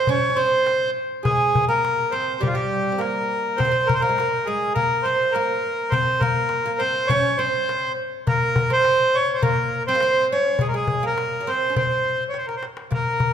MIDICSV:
0, 0, Header, 1, 4, 480
1, 0, Start_track
1, 0, Tempo, 584226
1, 1024, Time_signature, 4, 2, 24, 8
1, 10954, End_track
2, 0, Start_track
2, 0, Title_t, "Accordion"
2, 0, Program_c, 0, 21
2, 69, Note_on_c, 0, 73, 91
2, 289, Note_on_c, 0, 72, 88
2, 313, Note_off_c, 0, 73, 0
2, 744, Note_off_c, 0, 72, 0
2, 1019, Note_on_c, 0, 68, 81
2, 1356, Note_off_c, 0, 68, 0
2, 1385, Note_on_c, 0, 70, 92
2, 1735, Note_on_c, 0, 72, 75
2, 1755, Note_off_c, 0, 70, 0
2, 1972, Note_on_c, 0, 67, 73
2, 1987, Note_off_c, 0, 72, 0
2, 2029, Note_on_c, 0, 65, 65
2, 2038, Note_off_c, 0, 67, 0
2, 2081, Note_on_c, 0, 67, 79
2, 2093, Note_off_c, 0, 65, 0
2, 2452, Note_on_c, 0, 70, 76
2, 2466, Note_off_c, 0, 67, 0
2, 2930, Note_on_c, 0, 72, 88
2, 2953, Note_off_c, 0, 70, 0
2, 3177, Note_on_c, 0, 70, 92
2, 3185, Note_off_c, 0, 72, 0
2, 3239, Note_on_c, 0, 72, 74
2, 3240, Note_off_c, 0, 70, 0
2, 3292, Note_on_c, 0, 70, 90
2, 3298, Note_off_c, 0, 72, 0
2, 3661, Note_on_c, 0, 68, 85
2, 3672, Note_off_c, 0, 70, 0
2, 3886, Note_off_c, 0, 68, 0
2, 3896, Note_on_c, 0, 70, 94
2, 4130, Note_on_c, 0, 72, 80
2, 4148, Note_off_c, 0, 70, 0
2, 4369, Note_on_c, 0, 70, 82
2, 4385, Note_off_c, 0, 72, 0
2, 4846, Note_on_c, 0, 72, 89
2, 4872, Note_off_c, 0, 70, 0
2, 5091, Note_on_c, 0, 70, 93
2, 5104, Note_off_c, 0, 72, 0
2, 5575, Note_on_c, 0, 72, 99
2, 5594, Note_off_c, 0, 70, 0
2, 5809, Note_on_c, 0, 73, 107
2, 5829, Note_off_c, 0, 72, 0
2, 6060, Note_on_c, 0, 72, 84
2, 6066, Note_off_c, 0, 73, 0
2, 6510, Note_off_c, 0, 72, 0
2, 6801, Note_on_c, 0, 70, 98
2, 7164, Note_off_c, 0, 70, 0
2, 7168, Note_on_c, 0, 72, 101
2, 7514, Note_on_c, 0, 73, 96
2, 7528, Note_off_c, 0, 72, 0
2, 7671, Note_on_c, 0, 72, 53
2, 7698, Note_off_c, 0, 73, 0
2, 7738, Note_off_c, 0, 72, 0
2, 7741, Note_on_c, 0, 70, 89
2, 8078, Note_off_c, 0, 70, 0
2, 8110, Note_on_c, 0, 72, 101
2, 8443, Note_off_c, 0, 72, 0
2, 8479, Note_on_c, 0, 73, 87
2, 8715, Note_on_c, 0, 68, 79
2, 8719, Note_off_c, 0, 73, 0
2, 8770, Note_off_c, 0, 68, 0
2, 8777, Note_on_c, 0, 70, 65
2, 8827, Note_on_c, 0, 68, 82
2, 8828, Note_off_c, 0, 70, 0
2, 9075, Note_off_c, 0, 68, 0
2, 9088, Note_on_c, 0, 70, 85
2, 9430, Note_on_c, 0, 72, 85
2, 9447, Note_off_c, 0, 70, 0
2, 9654, Note_off_c, 0, 72, 0
2, 9667, Note_on_c, 0, 72, 77
2, 10056, Note_off_c, 0, 72, 0
2, 10097, Note_on_c, 0, 73, 66
2, 10166, Note_off_c, 0, 73, 0
2, 10168, Note_on_c, 0, 72, 57
2, 10239, Note_off_c, 0, 72, 0
2, 10243, Note_on_c, 0, 70, 59
2, 10314, Note_off_c, 0, 70, 0
2, 10324, Note_on_c, 0, 72, 64
2, 10392, Note_off_c, 0, 72, 0
2, 10629, Note_on_c, 0, 70, 85
2, 10954, Note_off_c, 0, 70, 0
2, 10954, End_track
3, 0, Start_track
3, 0, Title_t, "Oud"
3, 0, Program_c, 1, 24
3, 73, Note_on_c, 1, 61, 88
3, 235, Note_off_c, 1, 61, 0
3, 245, Note_on_c, 1, 61, 58
3, 297, Note_off_c, 1, 61, 0
3, 300, Note_on_c, 1, 60, 73
3, 749, Note_off_c, 1, 60, 0
3, 1011, Note_on_c, 1, 56, 55
3, 1382, Note_off_c, 1, 56, 0
3, 1385, Note_on_c, 1, 58, 70
3, 1745, Note_on_c, 1, 60, 72
3, 1755, Note_off_c, 1, 58, 0
3, 1977, Note_on_c, 1, 55, 76
3, 1992, Note_off_c, 1, 60, 0
3, 2085, Note_off_c, 1, 55, 0
3, 2095, Note_on_c, 1, 55, 74
3, 2400, Note_on_c, 1, 60, 49
3, 2414, Note_off_c, 1, 55, 0
3, 2453, Note_on_c, 1, 58, 73
3, 2461, Note_off_c, 1, 60, 0
3, 2942, Note_on_c, 1, 60, 69
3, 2953, Note_off_c, 1, 58, 0
3, 2998, Note_on_c, 1, 58, 64
3, 3003, Note_off_c, 1, 60, 0
3, 3052, Note_on_c, 1, 60, 73
3, 3058, Note_off_c, 1, 58, 0
3, 3304, Note_off_c, 1, 60, 0
3, 3305, Note_on_c, 1, 58, 67
3, 3357, Note_off_c, 1, 58, 0
3, 3360, Note_on_c, 1, 56, 60
3, 3417, Note_off_c, 1, 56, 0
3, 3448, Note_on_c, 1, 58, 75
3, 3673, Note_off_c, 1, 58, 0
3, 3676, Note_on_c, 1, 56, 73
3, 3904, Note_off_c, 1, 56, 0
3, 3907, Note_on_c, 1, 58, 76
3, 4130, Note_off_c, 1, 58, 0
3, 4154, Note_on_c, 1, 60, 72
3, 4397, Note_off_c, 1, 60, 0
3, 4400, Note_on_c, 1, 58, 78
3, 4874, Note_on_c, 1, 60, 73
3, 4888, Note_off_c, 1, 58, 0
3, 5114, Note_on_c, 1, 58, 75
3, 5118, Note_off_c, 1, 60, 0
3, 5460, Note_off_c, 1, 58, 0
3, 5470, Note_on_c, 1, 58, 71
3, 5585, Note_on_c, 1, 60, 75
3, 5592, Note_off_c, 1, 58, 0
3, 5833, Note_off_c, 1, 60, 0
3, 5837, Note_on_c, 1, 61, 96
3, 6067, Note_off_c, 1, 61, 0
3, 6070, Note_on_c, 1, 60, 78
3, 6516, Note_off_c, 1, 60, 0
3, 6793, Note_on_c, 1, 58, 64
3, 7149, Note_on_c, 1, 60, 75
3, 7161, Note_off_c, 1, 58, 0
3, 7744, Note_on_c, 1, 58, 84
3, 7766, Note_off_c, 1, 60, 0
3, 8116, Note_off_c, 1, 58, 0
3, 8122, Note_on_c, 1, 60, 89
3, 8173, Note_off_c, 1, 60, 0
3, 8175, Note_on_c, 1, 58, 65
3, 8227, Note_off_c, 1, 58, 0
3, 8235, Note_on_c, 1, 60, 79
3, 8479, Note_off_c, 1, 60, 0
3, 8482, Note_on_c, 1, 61, 77
3, 8717, Note_on_c, 1, 56, 71
3, 8721, Note_off_c, 1, 61, 0
3, 8814, Note_off_c, 1, 56, 0
3, 8823, Note_on_c, 1, 56, 63
3, 9059, Note_off_c, 1, 56, 0
3, 9062, Note_on_c, 1, 58, 72
3, 9371, Note_on_c, 1, 61, 55
3, 9375, Note_off_c, 1, 58, 0
3, 9423, Note_off_c, 1, 61, 0
3, 9426, Note_on_c, 1, 60, 72
3, 9606, Note_off_c, 1, 60, 0
3, 9610, Note_on_c, 1, 61, 50
3, 9663, Note_off_c, 1, 61, 0
3, 9666, Note_on_c, 1, 60, 66
3, 10056, Note_off_c, 1, 60, 0
3, 10604, Note_on_c, 1, 58, 62
3, 10954, Note_off_c, 1, 58, 0
3, 10954, End_track
4, 0, Start_track
4, 0, Title_t, "Darbuka"
4, 59, Note_on_c, 9, 64, 85
4, 141, Note_off_c, 9, 64, 0
4, 187, Note_on_c, 9, 62, 25
4, 269, Note_off_c, 9, 62, 0
4, 547, Note_on_c, 9, 63, 69
4, 629, Note_off_c, 9, 63, 0
4, 1028, Note_on_c, 9, 64, 93
4, 1110, Note_off_c, 9, 64, 0
4, 1276, Note_on_c, 9, 64, 89
4, 1359, Note_off_c, 9, 64, 0
4, 1399, Note_on_c, 9, 62, 26
4, 1481, Note_off_c, 9, 62, 0
4, 1517, Note_on_c, 9, 63, 69
4, 1599, Note_off_c, 9, 63, 0
4, 1755, Note_on_c, 9, 62, 25
4, 1837, Note_off_c, 9, 62, 0
4, 1875, Note_on_c, 9, 62, 23
4, 1958, Note_off_c, 9, 62, 0
4, 1997, Note_on_c, 9, 64, 85
4, 2079, Note_off_c, 9, 64, 0
4, 2124, Note_on_c, 9, 62, 24
4, 2207, Note_off_c, 9, 62, 0
4, 2241, Note_on_c, 9, 62, 25
4, 2323, Note_off_c, 9, 62, 0
4, 2475, Note_on_c, 9, 63, 67
4, 2557, Note_off_c, 9, 63, 0
4, 2958, Note_on_c, 9, 64, 85
4, 3040, Note_off_c, 9, 64, 0
4, 3200, Note_on_c, 9, 64, 84
4, 3282, Note_off_c, 9, 64, 0
4, 3316, Note_on_c, 9, 62, 25
4, 3398, Note_off_c, 9, 62, 0
4, 3436, Note_on_c, 9, 63, 71
4, 3519, Note_off_c, 9, 63, 0
4, 3794, Note_on_c, 9, 62, 21
4, 3876, Note_off_c, 9, 62, 0
4, 3914, Note_on_c, 9, 64, 70
4, 3996, Note_off_c, 9, 64, 0
4, 4043, Note_on_c, 9, 62, 24
4, 4125, Note_off_c, 9, 62, 0
4, 4394, Note_on_c, 9, 63, 67
4, 4476, Note_off_c, 9, 63, 0
4, 4865, Note_on_c, 9, 64, 92
4, 4947, Note_off_c, 9, 64, 0
4, 5105, Note_on_c, 9, 64, 86
4, 5187, Note_off_c, 9, 64, 0
4, 5214, Note_on_c, 9, 62, 24
4, 5296, Note_off_c, 9, 62, 0
4, 5332, Note_on_c, 9, 63, 67
4, 5415, Note_off_c, 9, 63, 0
4, 5702, Note_on_c, 9, 62, 20
4, 5784, Note_off_c, 9, 62, 0
4, 5829, Note_on_c, 9, 64, 87
4, 5911, Note_off_c, 9, 64, 0
4, 5952, Note_on_c, 9, 62, 22
4, 6034, Note_off_c, 9, 62, 0
4, 6319, Note_on_c, 9, 63, 67
4, 6401, Note_off_c, 9, 63, 0
4, 6797, Note_on_c, 9, 64, 99
4, 6879, Note_off_c, 9, 64, 0
4, 7031, Note_on_c, 9, 64, 98
4, 7113, Note_off_c, 9, 64, 0
4, 7158, Note_on_c, 9, 62, 26
4, 7240, Note_off_c, 9, 62, 0
4, 7270, Note_on_c, 9, 63, 70
4, 7352, Note_off_c, 9, 63, 0
4, 7632, Note_on_c, 9, 62, 22
4, 7714, Note_off_c, 9, 62, 0
4, 7745, Note_on_c, 9, 64, 95
4, 7827, Note_off_c, 9, 64, 0
4, 7859, Note_on_c, 9, 62, 23
4, 7941, Note_off_c, 9, 62, 0
4, 8220, Note_on_c, 9, 63, 73
4, 8302, Note_off_c, 9, 63, 0
4, 8699, Note_on_c, 9, 64, 85
4, 8781, Note_off_c, 9, 64, 0
4, 8935, Note_on_c, 9, 64, 86
4, 9017, Note_off_c, 9, 64, 0
4, 9183, Note_on_c, 9, 63, 77
4, 9265, Note_off_c, 9, 63, 0
4, 9423, Note_on_c, 9, 62, 28
4, 9505, Note_off_c, 9, 62, 0
4, 9551, Note_on_c, 9, 62, 25
4, 9633, Note_off_c, 9, 62, 0
4, 9665, Note_on_c, 9, 64, 84
4, 9747, Note_off_c, 9, 64, 0
4, 9783, Note_on_c, 9, 62, 25
4, 9865, Note_off_c, 9, 62, 0
4, 9903, Note_on_c, 9, 62, 28
4, 9985, Note_off_c, 9, 62, 0
4, 10139, Note_on_c, 9, 63, 52
4, 10221, Note_off_c, 9, 63, 0
4, 10261, Note_on_c, 9, 62, 61
4, 10343, Note_off_c, 9, 62, 0
4, 10374, Note_on_c, 9, 63, 65
4, 10456, Note_off_c, 9, 63, 0
4, 10491, Note_on_c, 9, 62, 84
4, 10573, Note_off_c, 9, 62, 0
4, 10614, Note_on_c, 9, 64, 92
4, 10696, Note_off_c, 9, 64, 0
4, 10846, Note_on_c, 9, 64, 83
4, 10928, Note_off_c, 9, 64, 0
4, 10954, End_track
0, 0, End_of_file